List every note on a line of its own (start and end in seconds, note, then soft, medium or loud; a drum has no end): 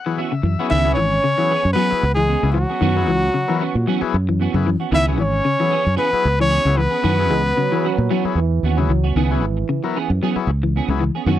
0.00 0.16 F#5 medium
0.06 0.24 E3 medium
0.06 0.21 F#3 medium
0.06 0.21 B3 medium
0.06 0.21 E4 medium
0.06 0.20 G#4 medium
0.17 0.32 E3 medium
0.17 0.32 B3 medium
0.17 0.33 C#4 medium
0.17 0.33 F#4 medium
0.17 0.67 E5 medium
0.32 0.40 C#3 medium
0.32 muted clean electric guitar stroke soft
0.43 0.55 F#2 medium
0.43 0.61 E3 medium
0.43 muted clean electric guitar stroke soft
0.59 0.71 F#3 medium
0.59 0.71 B3 medium
0.59 0.69 B3 soft
0.59 0.70 C#4 medium
0.59 0.71 E4 medium
0.59 0.71 F#4 medium
0.59 0.71 G#4 loud
0.70 0.98 C#2 medium
0.70 0.88 D#3 loud
0.70 0.85 E3 medium
0.70 0.85 B3 medium
0.70 0.85 C#4 medium
0.70 0.95 E4 loud
0.70 0.85 G#4 medium
0.70 0.94 E5 loud
0.85 1.00 F#3 medium
0.85 1.00 B3 medium
0.85 0.96 B3 soft
0.85 0.97 C#4 soft
0.85 1.00 E4 medium
0.85 1.00 G#4 medium
0.85 0.96 G#4 soft
0.94 1.18 G#1 medium
0.94 1.15 E3 medium
0.94 1.72 C#4 medium
0.94 1.71 C#5 loud
0.94 muted clean electric guitar stroke soft
1.12 muted clean electric guitar stroke soft
1.23 1.33 C#3 medium
1.23 muted clean electric guitar stroke soft
1.38 1.56 E3 medium
1.38 1.53 F#3 medium
1.38 1.53 B3 medium
1.38 1.53 E4 medium
1.38 1.53 G#4 medium
1.50 1.65 E3 medium
1.50 1.64 B3 medium
1.50 1.64 C#4 medium
1.50 1.63 G#4 medium
1.64 1.74 F#2 medium
1.64 muted clean electric guitar stroke soft
1.73 1.90 E3 medium
1.73 1.93 F#3 medium
1.73 2.12 B3 medium
1.73 1.91 B3 medium
1.73 1.91 C#4 medium
1.73 1.90 G#4 medium
1.73 2.13 B4 loud
1.90 2.05 F#3 medium
1.90 2.05 B3 medium
1.90 2.05 E4 medium
1.90 2.05 G#4 medium
1.90 muted clean electric guitar stroke soft
1.90 muted fingered electric bass stroke soft
2.03 2.35 C#2 loud
2.03 muted clean electric guitar stroke soft
2.15 2.34 E3 medium
2.15 2.52 G#3 medium
2.15 2.52 G#4 medium
2.28 2.43 B3 medium
2.28 2.42 C#4 medium
2.28 2.42 G#4 medium
2.43 2.64 C#2 medium
2.43 2.51 C#3 medium
2.43 2.58 F#3 medium
2.43 2.58 B3 medium
2.43 2.58 E4 medium
2.43 2.58 G#4 medium
2.43 muted clean electric guitar stroke soft
2.52 2.72 E3 medium
2.52 4.09 F#3 medium
2.52 4.08 F#4 medium
2.52 muted clean electric guitar stroke soft
2.69 2.80 B3 soft
2.69 2.81 C#4 soft
2.69 2.81 G#4 soft
2.81 3.08 F#2 loud
2.81 2.99 D#3 medium
2.81 2.96 E3 medium
2.81 2.96 B3 medium
2.81 2.95 C#4 medium
2.81 2.95 F#4 medium
2.96 3.11 F#3 medium
2.96 3.11 B3 medium
2.96 3.06 C#4 soft
2.96 3.11 E4 medium
2.96 3.07 F#4 medium
2.96 3.11 G#4 medium
3.07 3.29 C#2 loud
3.07 3.26 E3 medium
3.07 muted clean electric guitar stroke soft
3.23 muted clean electric guitar stroke soft
3.34 3.44 C#3 medium
3.34 muted clean electric guitar stroke medium
3.48 3.67 E3 medium
3.48 3.63 F#3 loud
3.48 3.63 B3 loud
3.48 3.63 E4 loud
3.48 3.63 A#4 loud
3.60 3.75 E3 medium
3.60 3.76 B3 medium
3.60 3.75 C#4 medium
3.60 3.75 F#4 medium
3.75 3.85 A#2 medium
3.75 muted clean electric guitar stroke medium
3.87 4.02 E3 medium
3.87 4.05 F#3 medium
3.87 4.01 B3 loud
3.87 4.01 C#4 loud
3.87 4.01 F#4 medium
4.01 4.17 F#3 medium
4.01 4.16 B3 medium
4.01 4.17 E4 medium
4.01 4.16 G#4 loud
4.01 muted fingered electric bass stroke soft
4.01 muted clean electric guitar stroke medium
4.14 4.46 F#2 loud
4.14 muted clean electric guitar stroke soft
4.29 4.46 E3 medium
4.40 4.55 E3 medium
4.40 4.55 B3 medium
4.40 4.54 C#4 medium
4.40 4.54 F#4 medium
4.54 4.75 F#2 loud
4.54 4.63 C#3 medium
4.54 4.70 F#3 medium
4.54 4.70 B3 medium
4.54 4.70 E4 medium
4.54 4.70 G#4 medium
4.54 muted clean electric guitar stroke soft
4.66 4.84 E3 medium
4.66 muted clean electric guitar stroke soft
4.80 4.91 B3 soft
4.80 4.91 C#4 medium
4.80 4.92 F#4 medium
4.91 5.19 C#2 loud
4.91 5.10 D#3 medium
4.91 5.07 E3 medium
4.91 5.05 B3 medium
4.91 5.05 C#4 medium
4.91 5.05 E4 loud
4.91 5.04 G#4 medium
4.91 5.06 E5 loud
5.05 5.23 F#3 medium
5.05 5.17 B3 soft
5.05 5.23 B3 medium
5.05 5.17 C#4 medium
5.05 5.23 E4 medium
5.05 5.18 G#4 medium
5.05 5.23 G#4 medium
5.18 5.40 G#1 loud
5.18 5.36 E3 medium
5.18 5.96 C#4 medium
5.18 5.96 C#5 medium
5.18 muted clean electric guitar stroke soft
5.33 muted clean electric guitar stroke soft
5.45 5.55 C#3 medium
5.45 muted clean electric guitar stroke soft
5.60 5.78 E3 medium
5.60 5.75 F#3 medium
5.60 5.75 B3 medium
5.60 5.75 E4 medium
5.60 5.75 G#4 medium
5.70 5.86 E3 medium
5.70 5.85 B3 medium
5.70 5.85 C#4 medium
5.70 5.84 G#4 medium
5.85 5.96 F#2 medium
5.85 muted clean electric guitar stroke soft
5.96 6.12 E3 medium
5.96 6.36 B3 medium
5.96 6.10 C#4 medium
5.96 6.10 G#4 loud
5.96 6.37 B4 loud
5.96 muted clean electric guitar stroke medium
6.11 6.28 F#3 medium
6.11 6.28 B3 medium
6.11 6.28 E4 medium
6.11 6.28 G#4 medium
6.11 muted clean electric guitar stroke soft
6.11 muted fingered electric bass stroke soft
6.22 6.57 C#2 loud
6.22 muted clean electric guitar stroke soft
6.39 6.58 E3 medium
6.39 6.79 C#4 medium
6.39 6.79 C#5 loud
6.49 6.65 E3 medium
6.49 6.64 B3 medium
6.49 6.64 C#4 medium
6.49 6.64 G#4 medium
6.65 6.86 C#2 loud
6.65 6.74 C#3 medium
6.65 6.81 F#3 medium
6.65 6.81 B3 medium
6.65 6.81 E4 medium
6.65 6.81 G#4 medium
6.65 muted clean electric guitar stroke soft
6.76 6.96 E3 medium
6.76 8.36 B3 medium
6.76 8.36 B4 loud
6.76 muted clean electric guitar stroke soft
6.91 7.03 B3 soft
6.91 7.02 C#4 soft
6.91 7.03 G#4 medium
7.03 7.31 F#2 medium
7.03 7.22 D#3 medium
7.03 7.19 E3 medium
7.03 7.19 B3 medium
7.03 7.18 C#4 medium
7.03 7.17 F#4 medium
7.18 7.34 F#3 medium
7.18 7.34 B3 medium
7.18 7.31 B3 soft
7.18 7.31 C#4 medium
7.18 7.34 E4 medium
7.18 7.31 F#4 soft
7.18 7.34 G#4 medium
7.30 7.52 C#2 loud
7.30 7.49 E3 medium
7.30 7.42 G#3 loud
7.46 muted clean electric guitar stroke medium
7.56 7.67 C#3 medium
7.56 8.32 F#3 loud
7.56 muted clean electric guitar stroke medium
7.72 7.90 E3 medium
7.72 7.87 F#3 loud
7.72 7.87 B3 medium
7.72 7.87 E4 medium
7.72 7.87 G#4 loud
7.84 7.98 E3 medium
7.84 7.98 B3 medium
7.84 7.98 C#4 medium
7.84 7.97 F#4 medium
7.98 8.08 A#2 medium
7.98 muted clean electric guitar stroke soft
8.10 8.25 E3 medium
8.10 8.28 F#3 medium
8.10 8.24 B3 medium
8.10 8.24 C#4 medium
8.10 8.24 F#4 medium
8.25 8.40 F#3 medium
8.25 8.40 B3 medium
8.25 8.40 E4 medium
8.25 8.40 G#4 loud
8.25 muted fingered electric bass stroke soft
8.25 muted clean electric guitar stroke soft
8.35 8.60 E2 medium
8.35 8.78 E3 medium
8.35 muted clean electric guitar stroke soft
8.63 8.87 D#2 medium
8.63 8.78 E3 medium
8.63 8.78 B3 medium
8.63 8.79 C#4 medium
8.63 8.78 F#4 medium
8.77 8.86 C#3 medium
8.77 9.10 F#3 medium
8.77 8.92 F#3 medium
8.77 8.92 B3 medium
8.77 8.93 E4 medium
8.77 8.92 G#4 medium
8.77 muted clean electric guitar stroke soft
8.89 9.13 C#2 medium
8.89 9.08 E3 medium
8.89 muted clean electric guitar stroke soft
9.04 9.15 B3 soft
9.04 9.16 C#4 medium
9.04 9.16 F#4 medium
9.10 9.19 F#3 medium
9.16 9.42 C#2 medium
9.16 9.34 D#3 loud
9.16 9.31 E3 medium
9.16 10.22 E3 medium
9.16 9.30 B3 medium
9.16 9.30 C#4 medium
9.16 9.29 G#4 medium
9.30 9.45 F#3 medium
9.30 9.45 B3 medium
9.30 9.41 B3 medium
9.30 9.42 C#4 soft
9.30 9.46 E4 medium
9.30 9.41 G#4 medium
9.30 9.46 G#4 loud
9.42 9.63 G#1 medium
9.42 muted clean electric guitar stroke medium
9.57 muted clean electric guitar stroke soft
9.69 9.79 C#3 medium
9.69 muted clean electric guitar stroke soft
9.83 9.98 F#3 medium
9.83 9.98 B3 medium
9.83 9.99 E4 medium
9.83 9.98 A#4 loud
9.83 muted clean electric guitar stroke medium
9.96 10.10 E3 medium
9.96 10.10 B3 medium
9.96 10.10 C#4 medium
9.96 10.10 G#4 medium
10.10 10.19 F#2 medium
10.10 muted clean electric guitar stroke soft
10.22 10.36 E3 medium
10.22 10.40 F#3 medium
10.22 10.37 B3 medium
10.22 10.36 C#4 medium
10.22 10.36 G#4 loud
10.36 10.51 F#3 medium
10.36 10.51 B3 medium
10.36 10.51 E4 medium
10.36 10.51 G#4 loud
10.36 muted fingered electric bass stroke soft
10.36 muted clean electric guitar stroke soft
10.47 10.79 C#2 medium
10.47 muted clean electric guitar stroke soft
10.63 10.81 E3 medium
10.76 10.90 E3 medium
10.76 10.89 B3 medium
10.76 10.89 C#4 medium
10.76 10.89 G#4 medium
10.88 11.09 C#2 medium
10.88 10.97 C#3 medium
10.88 11.04 F#3 medium
10.88 11.04 B3 medium
10.88 11.04 E4 medium
10.88 11.04 G#4 medium
10.88 muted clean electric guitar stroke soft
11.01 11.18 E3 medium
11.01 muted clean electric guitar stroke soft
11.15 11.26 B3 soft
11.15 11.26 C#4 medium
11.15 11.27 G#4 medium
11.26 11.39 F#2 loud
11.26 11.39 D#3 medium
11.26 11.39 E3 medium
11.26 11.39 B3 medium
11.26 11.39 C#4 loud
11.26 11.39 F#4 loud